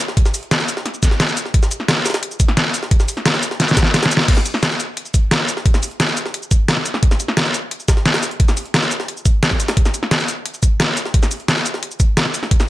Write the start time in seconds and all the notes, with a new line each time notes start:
0.08 snare
0.17 kick, closed hi-hat
0.26 snare, shaker
0.34 closed hi-hat, open hi-hat, shaker
0.43 closed hi-hat
0.51 snare, closed hi-hat
0.60 snare, shaker
0.68 closed hi-hat, open hi-hat, shaker
0.77 snare
0.86 snare, closed hi-hat
0.94 shaker
1.03 kick, snare, closed hi-hat, shaker
1.11 snare
1.20 snare, closed hi-hat
1.28 shaker
1.37 closed hi-hat, open hi-hat, shaker
1.46 snare
1.54 kick, closed hi-hat
1.63 snare, shaker
1.71 closed hi-hat, shaker
1.80 snare
1.88 snare, closed hi-hat
1.97 snare
2.06 snare, closed hi-hat, open hi-hat, shaker
2.10 snare, closed hi-hat
2.14 snare, closed hi-hat
2.23 closed hi-hat
2.31 closed hi-hat, shaker
2.40 kick, closed hi-hat, shaker
2.48 snare, closed hi-hat
2.57 snare, closed hi-hat
2.74 closed hi-hat, open hi-hat, shaker
2.83 snare
2.91 kick, closed hi-hat
3.00 snare, shaker
3.08 closed hi-hat, open hi-hat, shaker
3.17 snare, closed hi-hat
3.26 snare, closed hi-hat
3.34 snare, shaker
3.43 closed hi-hat, open hi-hat, shaker
3.51 snare
3.60 snare, closed hi-hat
3.68 snare, shaker
3.77 kick, snare, closed hi-hat, shaker
3.83 snare
3.94 snare, closed hi-hat
4.03 snare, closed hi-hat, shaker
4.06 snare
4.11 closed hi-hat, open hi-hat, shaker
4.17 snare
4.20 snare
4.28 kick, closed hi-hat, crash
4.37 snare, shaker
4.46 closed hi-hat, shaker
4.54 snare
4.63 snare, closed hi-hat
4.71 snare, shaker
4.80 closed hi-hat, shaker
4.97 closed hi-hat
5.06 closed hi-hat, shaker
5.14 kick, closed hi-hat, shaker
5.31 snare, closed hi-hat
5.48 closed hi-hat, open hi-hat, shaker
5.57 snare
5.66 kick, closed hi-hat
5.74 snare, shaker
5.83 closed hi-hat, open hi-hat, shaker
5.91 closed hi-hat
6.00 snare, closed hi-hat
6.08 snare, shaker
6.17 closed hi-hat, shaker
6.26 snare
6.34 closed hi-hat
6.43 shaker
6.51 kick, closed hi-hat, shaker
6.68 snare, closed hi-hat
6.77 snare
6.86 closed hi-hat, open hi-hat, shaker
6.94 snare
7.03 kick, closed hi-hat
7.11 snare, shaker
7.20 closed hi-hat, shaker
7.28 snare
7.37 snare, closed hi-hat
7.46 snare, shaker
7.54 closed hi-hat, shaker
7.71 closed hi-hat
7.80 closed hi-hat, shaker
7.88 kick, snare, closed hi-hat, shaker
7.97 snare
8.06 snare, closed hi-hat
8.14 snare, closed hi-hat
8.23 snare, open hi-hat, shaker
8.31 closed hi-hat
8.40 kick, closed hi-hat
8.48 snare, shaker
8.57 closed hi-hat, open hi-hat, shaker
8.66 closed hi-hat
8.74 snare, closed hi-hat
8.83 snare, shaker
8.91 closed hi-hat, shaker
9.00 snare
9.08 closed hi-hat
9.17 shaker
9.26 kick, closed hi-hat, shaker
9.43 snare, closed hi-hat
9.51 kick, snare
9.60 closed hi-hat, open hi-hat, shaker
9.68 snare, closed hi-hat
9.77 kick, closed hi-hat
9.86 snare, shaker
9.94 closed hi-hat, shaker
10.03 snare
10.11 snare, closed hi-hat
10.20 snare, shaker
10.28 closed hi-hat, shaker
10.46 closed hi-hat
10.54 closed hi-hat, shaker
10.63 kick, closed hi-hat, shaker
10.80 snare, closed hi-hat
10.97 closed hi-hat, open hi-hat, shaker
11.06 snare
11.14 kick, closed hi-hat
11.23 snare, shaker
11.31 closed hi-hat, open hi-hat, shaker
11.40 closed hi-hat
11.48 snare, closed hi-hat
11.57 snare, shaker
11.66 closed hi-hat, shaker
11.74 snare
11.83 closed hi-hat
11.91 shaker
12.00 kick, closed hi-hat, shaker
12.17 snare, closed hi-hat
12.26 snare
12.34 closed hi-hat, open hi-hat, shaker
12.43 snare
12.51 kick, closed hi-hat
12.60 snare, shaker